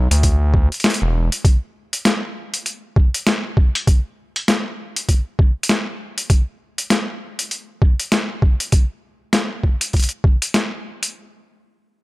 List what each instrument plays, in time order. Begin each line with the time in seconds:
0.11 analog synth bass D2, closed hi-hat
0.23 kick, closed hi-hat
0.54 kick
0.72 closed hi-hat
0.74 closed hi-hat
0.80 closed hi-hat
0.84 snare, closed hi-hat
0.90 closed hi-hat
0.94 closed hi-hat
1.02 analog synth bass E1
1.32 closed hi-hat
1.45 kick, closed hi-hat
1.93 closed hi-hat
2.05 snare, closed hi-hat
2.54 closed hi-hat
2.66 closed hi-hat
2.96 kick
3.14 closed hi-hat
3.27 snare, closed hi-hat
3.57 kick
3.75 closed hi-hat
3.87 kick, closed hi-hat
4.36 closed hi-hat
4.48 snare, closed hi-hat
4.96 closed hi-hat
5.09 kick, closed hi-hat
5.39 kick
5.63 closed hi-hat
5.69 snare, closed hi-hat
6.18 closed hi-hat
6.30 kick, closed hi-hat
6.78 closed hi-hat
6.90 snare, closed hi-hat
7.39 closed hi-hat
7.51 closed hi-hat
7.82 kick
8.00 closed hi-hat
8.12 snare, closed hi-hat
8.42 kick
8.60 closed hi-hat
8.72 kick, closed hi-hat
9.33 snare, closed hi-hat
9.63 kick
9.81 closed hi-hat
9.93 kick, closed hi-hat
9.97 closed hi-hat
9.99 closed hi-hat
10.03 closed hi-hat
10.09 closed hi-hat
10.24 kick
10.42 closed hi-hat
10.54 snare, closed hi-hat
11.03 closed hi-hat